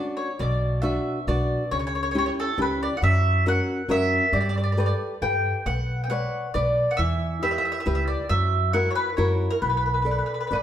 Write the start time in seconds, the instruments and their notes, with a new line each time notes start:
Already playing: nylon-string guitar C#4 D4 F#4
0.17 mandolin C#5
0.39 upright bass B1, nylon-string guitar B2, mandolin D5
0.82 nylon-string guitar B3 D4 F#4, mandolin E5
1.27 upright bass B1, nylon-string guitar B3 D4 F#4, mandolin D5
1.71 upright bass C#2, nylon-string guitar C#3, mandolin C#5
1.79 mandolin C#5
1.87 mandolin C#5
1.95 mandolin C#5
2.03 mandolin C#5
2.11 nylon-string guitar C#4 E4 G4, mandolin C#5
2.18 mandolin C#5
2.26 mandolin C#5
2.40 mandolin A4
2.58 upright bass C#2, nylon-string guitar C#4 E4 G4
2.62 mandolin B4
2.83 mandolin D5
2.97 mandolin F#5
3.02 upright bass F#2, nylon-string guitar F#3, mandolin E5
3.46 nylon-string guitar C#4 F#4 A#4, mandolin F#5
3.88 upright bass F#2, nylon-string guitar C#4 F#4 A#4, mandolin E5
4.33 upright bass G2, nylon-string guitar G3, mandolin D5
4.40 mandolin D5
4.49 mandolin D5
4.57 mandolin D5
4.63 mandolin D5
4.72 mandolin D5
4.77 nylon-string guitar G4 A4 B4, mandolin D5
4.86 mandolin D5
5.22 upright bass G2, nylon-string guitar G4 A4 B4, mandolin G5
5.66 upright bass B1, nylon-string guitar B3, mandolin F#5
6.04 mandolin G5
6.10 nylon-string guitar B4 C#5 D5, mandolin F#5
6.54 upright bass B1, nylon-string guitar B4 D5, mandolin D5
6.91 mandolin F#5
6.97 upright bass E2, nylon-string guitar E3, mandolin E5
7.42 nylon-string guitar E4 G4 B4, mandolin E5
7.51 mandolin E5
7.58 mandolin E5
7.65 mandolin E5
7.72 mandolin E5
7.80 mandolin E5
7.86 upright bass C#2, nylon-string guitar E4 G4 B4, mandolin E5
7.95 mandolin E5
8.08 mandolin D5
8.29 upright bass F#2, nylon-string guitar F#3, mandolin E5
8.73 nylon-string guitar E4 F#4 A#4, mandolin F#5
8.90 mandolin C#5
8.95 mandolin B4
9.17 upright bass F#2, nylon-string guitar E4 F#4 A#4, mandolin C#5
9.51 mandolin A#4
9.62 upright bass B1, nylon-string guitar B3, mandolin B4
9.69 mandolin B4
9.77 mandolin B4
9.86 mandolin B4
9.94 mandolin B4
10.02 nylon-string guitar A4 B4 D5, mandolin B4
10.11 mandolin B4
10.18 mandolin B4
10.26 mandolin B4
10.34 mandolin B4
10.41 mandolin B4
10.47 upright bass A1, nylon-string guitar A4 B4, mandolin B4
10.52 mandolin B4, nylon-string guitar D5